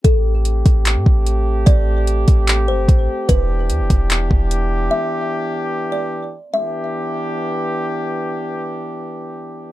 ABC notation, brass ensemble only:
X:1
M:4/4
L:1/8
Q:1/4=148
K:Em
V:1 name="Brass ensemble"
[A,CG]8- | [A,CG]8 | [E,B,DG]8- | [E,B,DG]8 |
[E,B,DG]8- | [E,B,DG]8 |]